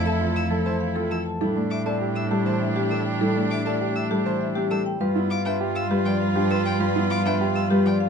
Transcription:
Already playing: F2 E3 F3 A3 C4 E4 A4 F5
0.06 A4 E5 A5
0.21 F4
0.36 F5 E6
0.51 F3 A4
0.66 E3 C5 A5
0.80 F5
0.95 C4 F4 A4
1.11 F3 A4 E6
1.26 A5
1.41 A2 G3 D4 E4 G4 A4
1.56 A3 D4
1.71 E5 D6
1.86 C4 A4 D5 A5
2.01 G4
2.16 E5 E6
2.31 G3 G4 A4
2.46 E3 C5 A5
2.61 E5
2.76 C4 G4
2.91 G3 A4 E6
3.06 G5
3.21 G3 E4 A4
3.36 A3 D4
3.51 E5 D6
3.66 C4 A4 D5 A5
3.81 G4
3.96 E5 E6
4.11 G3 G4 A4
4.26 E3 C5 A5
4.41 E5
4.55 C4 G4
4.71 G3 A4 E6
4.86 G5
5.01 G2 G3 F4 B4
5.15 B3 E4
5.30 F5 D6
5.45 D4 B4 E5 G5
5.61 G4
5.75 F5 E6
5.91 G3 G4 B4
6.05 F3 D5 G5
6.20 F5
6.35 D4 G4
6.50 G3 B4 E6
6.65 G5
6.80 G3 F4 B4
6.95 B3 E4
7.10 F5 D6
7.25 D4 B4 E5 G5
7.41 G4
7.55 F5 E6
7.70 G3 G4 B4
7.86 F3 D5 G5
8.00 F5

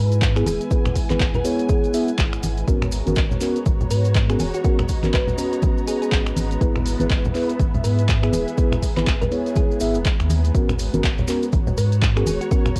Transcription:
Already playing: G#2 G#3 B3 E4 F#4 B4 E5 G#5
0.12 closed hi-hat, maracas
0.22 kick, clap, closed hi-hat, maracas
0.36 B3 E4 G#4 B4, finger snap, closed hi-hat, maracas
0.46 D#1 G#4, open hi-hat, high conga, maracas
0.61 closed hi-hat, maracas
0.71 B3 E4 G#4 B4 F#5, kick, closed hi-hat, maracas
0.85 finger snap, closed hi-hat, low conga, maracas
0.95 kick, open hi-hat, maracas
1.10 G#1 B3 E4 G#4 B4, clap, closed hi-hat, high conga, maracas
1.20 G#1, kick, clap, closed hi-hat, maracas
1.34 B4, low conga, maracas
1.44 B3 E4 G#4 C#5, open hi-hat, maracas
1.59 closed hi-hat, maracas
1.69 G#4, kick, closed hi-hat, high conga, maracas
1.84 closed hi-hat, maracas
1.94 B3 E4 G#4 E5, open hi-hat, maracas
2.08 closed hi-hat, maracas
2.18 G#1, kick, clap, closed hi-hat, maracas
2.33 finger snap, closed hi-hat, maracas
2.43 G#1, open hi-hat, high conga, maracas
2.57 closed hi-hat, maracas
2.67 G#1 B3 C#4 F#4 A#4 C#5 A#5, kick, closed hi-hat, maracas
2.82 finger snap, closed hi-hat, low conga, maracas
2.92 F#4, open hi-hat, maracas
3.02 C#5
3.06 G#1 B3 C#4 F#4 A#4, closed hi-hat, high conga, maracas
3.16 G#1, kick, clap, closed hi-hat, maracas
3.31 low conga, maracas
3.41 B3 C#4 F#4 A#4, clap, open hi-hat, maracas
3.56 closed hi-hat, maracas
3.66 G#1, kick, closed hi-hat, high conga, maracas
3.81 A#5, low conga, maracas
3.91 G#2 B4, open hi-hat, maracas
4.05 closed hi-hat, maracas
4.15 kick, clap, closed hi-hat, maracas
4.29 B3 C#4 F#4 G#4 A#4, finger snap, closed hi-hat, maracas
4.39 D#1 G#4, open hi-hat, high conga, maracas
4.54 F#4, closed hi-hat, maracas
4.64 B3 C#4 F#4 A#4 D#5, kick, closed hi-hat, maracas
4.79 finger snap, closed hi-hat, low conga, maracas
4.89 kick, open hi-hat, maracas
5.03 G#1 B3 C#4 F#4 A#4, clap, closed hi-hat, high conga, maracas
5.14 G#1 B4, kick, clap, closed hi-hat, maracas
5.28 low conga, maracas
5.38 B3 C#4 F#4 B4, open hi-hat, maracas
5.53 closed hi-hat, maracas
5.62 kick, closed hi-hat, high conga, maracas
5.78 maracas
5.87 G#4, open hi-hat, maracas
6.02 G#4, closed hi-hat, maracas
6.12 G#1, kick, clap, closed hi-hat, maracas
6.26 finger snap, closed hi-hat, maracas
6.36 G#1, open hi-hat, high conga, maracas
6.51 closed hi-hat, maracas
6.61 G#1 G#3 B3 E4 G#4 B4 E5, kick, closed hi-hat, maracas
6.76 finger snap, closed hi-hat, low conga, maracas
6.86 E5, open hi-hat, maracas
6.94 G#4
7.00 G#1 B3 E4 G#4 B4, closed hi-hat, high conga, maracas
7.10 G#1, kick, clap, closed hi-hat, maracas
7.25 low conga, maracas
7.35 B3 E4 G#4 B4, clap, open hi-hat, maracas
7.49 closed hi-hat, maracas
7.59 G#1, kick, closed hi-hat, high conga, maracas
7.74 low conga, maracas
7.84 G#2 B4, open hi-hat, maracas
7.99 closed hi-hat, maracas
8.09 kick, clap, closed hi-hat, maracas
8.23 B3 E4 G#4 B4, finger snap, closed hi-hat, maracas
8.33 D#1 G#4, open hi-hat, high conga, maracas
8.48 closed hi-hat, maracas
8.57 B3 E4 G#4 B4 A#5, kick, closed hi-hat, maracas
8.72 finger snap, closed hi-hat, low conga, maracas
8.82 kick, open hi-hat, maracas
8.97 G#1 B3 E4 G#4 B4, clap, closed hi-hat, high conga, maracas
9.07 G#1, kick, clap, closed hi-hat, maracas
9.21 B4, closed hi-hat, low conga, maracas
9.31 B3 E4 G#4 C#5, open hi-hat, maracas
9.46 closed hi-hat, maracas
9.55 G#4, kick, closed hi-hat, high conga, maracas
9.71 maracas
9.80 G#1 B3 E4 G#4 E5, open hi-hat, maracas
9.94 D#1, closed hi-hat, maracas
10.05 kick, clap, closed hi-hat, maracas
10.20 D#2, finger snap, closed hi-hat, maracas
10.30 open hi-hat, high conga, maracas
10.44 closed hi-hat, maracas
10.54 G#1 B3 C#4 F#4 A#4 C#5, kick, closed hi-hat, maracas
10.69 F#4, finger snap, closed hi-hat, low conga, maracas
10.79 open hi-hat, maracas
10.93 G#1 B3 C#4 F#4 A#4, closed hi-hat, high conga, maracas
11.04 G#1, kick, clap, closed hi-hat, maracas
11.18 low conga, maracas
11.28 B3 C#4 F#4 A#4, clap, open hi-hat, maracas
11.43 closed hi-hat, maracas
11.52 G#1, kick, closed hi-hat, high conga, maracas
11.57 C#5
11.67 low conga, maracas
11.78 G#2 B4, open hi-hat, maracas
11.92 closed hi-hat, maracas
12.02 kick, clap, closed hi-hat, maracas
12.16 B3 C#4 F#4 G#4 A#4, finger snap, closed hi-hat, maracas
12.26 D#1 G#4, open hi-hat, high conga, maracas
12.33 A#5
12.41 F#4, closed hi-hat, maracas
12.51 B3 C#4 F#4 A#4, kick, closed hi-hat, maracas
12.66 finger snap, closed hi-hat, low conga, maracas
12.76 kick, open hi-hat, maracas

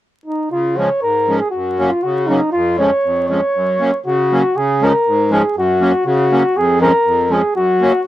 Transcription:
0.26 D#4
0.51 C#3 F4
0.77 F3 G#3 C#4 C#5
1.02 G#2 A#4
1.28 F3 G#3 C#4
1.39 G#4
1.51 F#2 F#4
1.79 F#3 A#3 C#4
1.90 F4
2.03 C#3 F#4
2.27 F#3 A#3 C#4 D#4
2.52 F2 F4
2.79 F3 G#3 C#4 C#5
3.04 F2
3.29 F3 G#3 C#4 C#5
3.55 F#2
3.80 F#3 A#3 C#4
4.06 C#3 F#4
4.32 F#3 A#3 C#4
4.56 C#3 G#4
4.82 F3 G#3 C#4 A#4
5.07 G#2
5.31 F3 G#3 C#4 G#4
5.56 F#2 F#4
5.81 F#3 A#3 C#4
6.05 C#3 F#4
6.31 F#3 A#3 C#4
6.55 F2 G#4
6.81 F3 G#3 C#4 A#4
7.05 F2
7.30 F3 G#3 C#4 G#4
7.55 F#2 F#4
7.81 F#3 A#3 C#4

